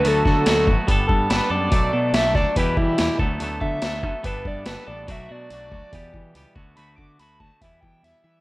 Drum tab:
HH |o-o-o-o-|o-o-o-o-|o-o-o-o-|o-o-o-o-|
SD |-oo---o-|--oo--o-|--o---o-|--------|
BD |-o-ooo--|o--ooo-o|-o-ooo--|o--ooo-o|

HH |o-o-o-o-|
SD |--------|
BD |-o-ooo--|